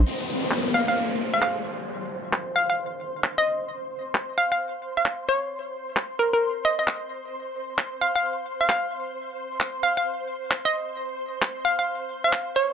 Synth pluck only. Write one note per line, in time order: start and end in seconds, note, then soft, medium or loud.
0.74 0.83 F5 medium
0.88 0.94 F5 medium
1.34 1.41 F5 medium
1.42 1.59 F5 medium
2.56 2.65 F5 medium
2.70 2.75 F5 medium
3.38 3.52 D#5 medium
4.38 4.47 F5 medium
4.52 4.57 F5 medium
4.97 5.04 F5 medium
5.29 5.45 C#5 medium
6.19 6.28 A#4 medium
6.33 6.39 A#4 medium
6.65 6.74 D#5 medium
6.79 6.85 D#5 medium
8.01 8.10 F5 medium
8.16 8.21 F5 medium
8.61 8.68 F5 medium
8.70 8.86 F5 medium
9.83 9.92 F5 medium
9.97 10.03 F5 medium
10.65 10.80 D#5 medium
11.65 11.74 F5 medium
11.79 11.84 F5 medium
12.24 12.31 F5 medium
12.56 12.73 C#5 medium